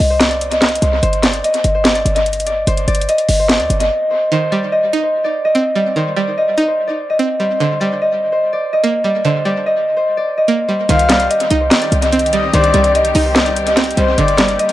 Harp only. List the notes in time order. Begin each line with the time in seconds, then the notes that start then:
Already playing: D#5
0.10 C5
0.30 D5
0.52 D#5
0.82 C5
1.03 C5
1.23 D5
1.44 D#5
1.75 C5
1.95 D5
2.15 D#5
2.46 D5
2.67 C5
2.88 D5
3.09 D#5
3.39 C5
3.60 D5
3.80 D#5
4.11 C5
4.32 C5
4.52 D5
4.72 D#5
5.03 C5
5.24 D5
5.45 D#5
5.75 D5
5.97 C5
6.17 D5
6.38 D#5
6.68 C5
6.87 D5
7.10 D#5
7.39 C5
7.60 C5
7.80 D5
8.02 D#5
8.32 C5
8.53 D5
8.73 D#5
9.04 D5
9.25 C5
9.45 D5
9.66 D#5
9.97 C5
10.17 D5
10.37 D#5
10.68 C5
10.90 C5
11.09 D5
11.30 D#5
11.61 C5
11.82 D5
12.02 D#5
12.33 D5
12.54 C5
12.74 D5
12.95 D#5
13.25 C5
13.45 D5
13.67 D#5
13.97 C5
14.18 C5
14.38 D5
14.59 D#5